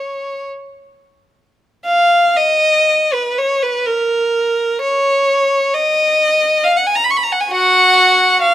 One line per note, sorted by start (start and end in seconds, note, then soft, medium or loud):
0.00 0.46 C#5 soft
1.85 2.33 F5 medium
2.36 3.13 D#5 medium
3.13 3.38 B4 medium
3.38 3.62 C#5 medium
3.62 3.86 B4 medium
3.86 4.81 A#4 medium
4.81 5.72 C#5 medium
5.74 6.63 D#5 medium
6.64 6.77 F5 medium
6.76 6.87 F#5 medium
6.86 6.95 G#5 medium
6.95 7.02 A#5 medium
7.04 7.10 B5 medium
7.10 7.17 C#6 medium
7.16 7.24 B5 medium
7.23 7.32 A#5 medium
7.32 7.41 F#5 medium
7.40 7.50 G#5 medium
7.50 8.37 F#4 medium
7.50 8.41 F#5 medium
8.41 8.54 F5 medium